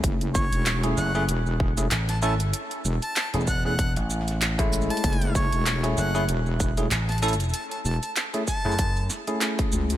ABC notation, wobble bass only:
X:1
M:4/4
L:1/16
Q:"Swing 16ths" 1/4=96
K:F#m
V:1 name="Wobble bass" clef=bass
F,,,3 E,,,3 z2 E,,,4 z4 | z2 E,,, z12 z | F,,,3 E,,,3 z2 E,,,4 z4 | z2 E,,, z8 z3 C,,2 |]